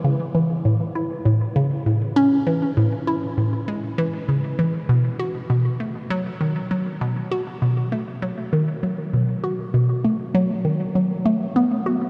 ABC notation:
X:1
M:4/4
L:1/8
Q:1/4=99
K:Bmix
V:1 name="Synth arpeggio sound" clef=bass
C, E, A,, E A,, C, A,, C | E, A,, E A,, G, E, C, E, | B,, F B,, A, F, D, F, B,, | F B,, A, F, D, F, B,, F |
B,, A, F, D, F, A, B, F |]